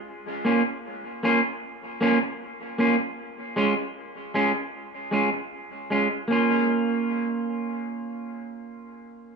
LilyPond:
\new Staff \with { instrumentName = "Clean electric guitar" } { \time 4/4 \key bes \minor \tempo 4 = 77 r8 <bes des' f'>8 r8 <bes des' f'>8 r8 <bes des' f'>8 r8 <bes des' f'>8 | r8 <aes des' f'>8 r8 <aes des' f'>8 r8 <aes des' f'>8 r8 <aes des' f'>8 | <bes des' f'>1 | }